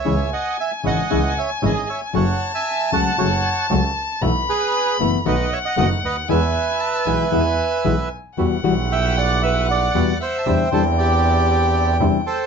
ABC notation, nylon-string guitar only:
X:1
M:4/4
L:1/8
Q:1/4=116
K:E
V:1 name="Nylon-string guitar" clef=bass
[C,E,G,CE] z2 [C,E,G,CE] [C,E,G,CE] z [C,E,G,CE] z | [C,F,A,CF] z2 [C,F,A,CF] [C,F,A,CF] z [C,F,A,CF] z | [B,,E,A,B,E] z2 [B,,E,A,B,E] [B,,D,A,B,F] z [B,,D,A,B,F] z | [B,,E,G,B,E] z2 [B,,E,G,B,E] [B,,E,G,B,E] z [B,,E,G,B,E] z |
[K:Em] [B,,E,G,B,F] [B,,E,G,B,F] z4 [B,,E,G,B,F] z | [C,E,G,DE] [C,E,G,DE] z4 [C,E,G,DE] z |]